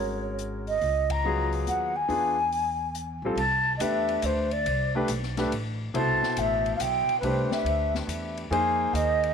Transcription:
0.00 0.78 G#1 medium
0.00 0.73 G#3 medium
0.00 0.73 C#4 soft
0.00 0.74 F#4 soft
0.00 0.74 A#4 medium
0.00 0.35 C#5 medium
0.39 closed hi-hat medium
0.67 1.12 D#5 medium
0.67 open hi-hat soft
0.81 1.63 C#2 medium
0.81 open hi-hat soft
1.10 1.53 A#5 medium
1.10 kick medium
1.10 ride medium
1.25 1.90 F#3 medium
1.25 1.90 B3 medium
1.25 1.90 F4 medium
1.25 1.91 G#4 medium
1.53 open hi-hat soft
1.67 2.06 D#2 medium
1.67 1.97 F#5 medium
1.67 closed hi-hat medium
1.96 2.95 G#5 medium
2.08 3.19 E2 medium
2.08 2.35 B3 medium
2.08 2.35 D4 medium
2.08 2.35 F4 medium
2.08 2.35 G#4 medium
2.08 open hi-hat soft
2.52 open hi-hat soft
2.95 closed hi-hat medium
3.22 3.35 A#1 medium
3.22 3.37 G3 medium
3.22 3.37 C4 medium
3.22 3.38 F4 medium
3.26 3.38 A4 medium
3.36 3.78 C2 medium
3.36 3.73 A5 loud
3.36 ride medium
3.77 4.21 E2 medium
3.77 4.46 A3 medium
3.77 4.46 D4 medium
3.77 4.46 G4 medium
3.77 3.83 D#5 medium
3.77 hi-hat pedal medium
3.77 ride medium
3.81 4.46 B4 medium
3.81 4.27 E5 medium
4.09 ride soft
4.22 4.64 D2 medium
4.22 4.54 C5 medium
4.22 hi-hat pedal soft
4.22 ride medium
4.51 4.95 D5 medium
4.51 ride soft
4.66 5.07 C2 medium
4.66 ride medium
4.95 5.08 A3 medium
4.95 5.08 D4 medium
4.95 5.08 G4 medium
4.95 5.08 B4 medium
5.08 5.50 B1 medium
5.08 hi-hat pedal medium
5.08 ride medium
5.23 snare soft
5.37 5.50 A3 medium
5.37 5.50 D4 medium
5.37 5.51 G4 medium
5.37 5.51 B4 medium
5.37 snare soft
5.37 ride soft
5.51 5.92 A1 medium
5.51 ride medium
5.94 6.21 C2 medium
5.94 7.14 B2 medium
5.94 7.14 E4 medium
5.94 7.14 A4 medium
5.94 7.14 C5 medium
5.94 6.40 A5 medium
5.94 ride medium
6.22 muted upright bass stroke soft
6.22 snare soft
6.37 6.78 A1 medium
6.37 6.75 E5 loud
6.37 hi-hat pedal medium
6.37 ride medium
6.66 ride soft
6.76 7.06 B1 medium
6.76 6.83 F5 medium
6.76 hi-hat pedal medium
6.76 ride medium
6.81 7.19 G5 medium
7.08 muted upright bass stroke soft
7.08 ride soft
7.19 7.48 C2 medium
7.19 8.42 A3 medium
7.19 7.26 B4 medium
7.19 ride medium
7.24 8.43 D4 medium
7.24 8.43 G4 medium
7.24 8.43 B4 medium
7.24 7.53 C5 medium
7.51 7.94 E5 medium
7.51 muted upright bass stroke soft
7.51 snare medium
7.64 8.06 D2 medium
7.64 ride medium
7.95 snare soft
8.07 8.49 E2 medium
8.07 hi-hat pedal medium
8.07 ride medium
8.37 ride soft
8.50 8.92 F2 medium
8.50 9.34 A#3 medium
8.50 9.34 D#4 medium
8.50 9.34 G#4 medium
8.50 9.34 C5 medium
8.50 8.95 G#5 medium
8.50 ride medium
8.93 9.34 D#2 medium
8.93 9.34 D#5 loud
8.93 hi-hat pedal medium
8.93 ride medium
9.23 ride soft

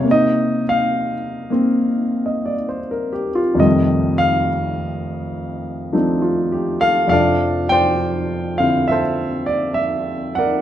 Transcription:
0.00 3.55 C3 medium
0.00 1.49 A#3 soft
0.11 3.61 D#4 medium
0.11 0.63 D#5 medium
0.69 1.14 F5 medium
1.50 3.57 A#3 soft
1.50 3.57 C4 soft
2.26 2.53 D#5 soft
2.46 2.77 D5 medium
2.69 3.11 C5 medium
2.91 3.29 A#4 medium
3.13 3.40 G4 medium
3.35 3.66 F4 medium
3.55 7.06 F2 medium
3.55 7.09 C3 soft
3.55 7.11 D#3 medium
3.55 7.12 G3 soft
3.60 5.92 A3 soft
3.60 4.14 D#5 medium
4.18 4.47 F5 medium
5.93 7.10 F3 soft
5.93 7.11 A3 soft
5.93 7.12 C4 soft
5.93 7.11 D4 soft
5.93 5.95 D#4 soft
6.22 6.78 F4 soft
6.52 6.98 G4 medium
6.81 7.10 A4 medium
6.81 7.08 F5 loud
7.07 10.62 F2 medium
7.07 10.62 C3 soft
7.07 7.71 D5 medium
7.07 7.72 F5 medium
7.12 10.62 F3 soft
7.12 10.62 D4 medium
7.12 8.85 A4 medium
7.69 8.90 C5 medium
7.69 9.45 D5 medium
7.69 8.61 G5 loud
8.58 10.62 D3 soft
8.58 10.62 C4 soft
8.58 10.62 E4 soft
8.58 8.88 F5 medium
8.88 10.62 A4 medium
8.88 10.62 C5 medium
8.88 9.01 E5 medium
9.46 9.77 D5 medium
9.74 10.32 E5 medium
10.35 10.62 A#4 medium
10.35 10.62 D5 medium
10.35 10.62 F#5 medium

